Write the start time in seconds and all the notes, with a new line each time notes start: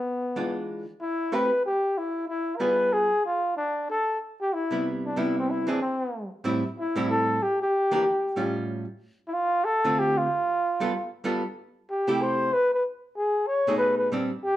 Already playing: B3
0.36 E3 G#3 D4 F4
1.00 E4
1.32 A3 C4 G4 B4
1.66 G4
1.98 E4
2.28 E4
2.56 G3 B3 A#4
2.60 F4 G#4 B4
2.93 G#4
3.26 F4
3.56 D4
3.90 A4
4.41 G4
4.53 E4
4.71 C3 G3 B3 E4
5.06 D4
5.16 C3 G3 B3 E4
5.38 C4
5.50 E4
5.67 E3 C4 D4 G#4
5.82 C4
6.44 A2 G3 C4 E4
6.79 E4
6.96 A2 G3 C4 E4
7.10 A4
7.43 G4
7.62 G4
7.91 E3 A#3 D4 G4
8.36 A2 G3 C#4 F4
9.28 E4
9.33 F4
9.65 A4
9.84 D3 A3 C4 F4
9.99 G4
10.18 F4
10.80 G3 B3 F4 A4
11.24 G3 B3 F4 A4
11.90 G4
12.07 C3 A3 E4 G4
12.22 C5
12.54 B4
12.73 B4
13.17 G#4
13.47 C#5
13.67 B2 A3 D#4 G#4
13.78 B4
13.98 B4
14.12 A#2 G3 C4 D4
14.44 G4